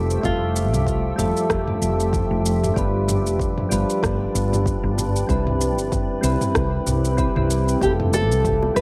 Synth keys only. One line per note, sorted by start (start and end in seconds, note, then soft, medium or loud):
0.00 0.20 G3 medium
0.00 0.20 E4 medium
0.00 0.21 F4 medium
0.00 0.22 A4 medium
0.21 1.14 G3 medium
0.21 1.15 F4 medium
0.21 1.15 E5 medium
0.26 1.16 A4 medium
1.16 2.72 G3 medium
1.16 2.73 F4 medium
1.16 2.74 A4 loud
1.16 2.73 E5 medium
2.74 3.67 G3 medium
2.74 3.67 D4 medium
2.74 3.68 F4 medium
2.78 3.69 B4 medium
3.69 5.25 G3 medium
3.69 5.25 D4 medium
3.69 5.26 F4 medium
3.69 5.27 B4 medium
5.27 6.20 G3 medium
5.27 6.20 C4 medium
5.27 6.21 E4 medium
5.27 6.22 B4 medium
6.21 7.14 G3 medium
6.21 7.15 C4 medium
6.21 7.16 E4 medium
6.21 7.16 B4 medium
7.17 7.31 G3 medium
7.17 7.32 C4 medium
7.17 7.32 E4 medium
7.17 7.32 B4 medium
7.35 7.78 G3 medium
7.35 7.78 C4 medium
7.35 7.79 E4 medium
7.35 7.79 B4 medium
7.81 8.73 G3 medium
7.81 8.73 E4 medium
7.81 8.74 F4 medium
7.85 8.75 A4 medium
8.75 8.81 G3 medium
8.75 8.81 E4 medium
8.75 8.81 F4 medium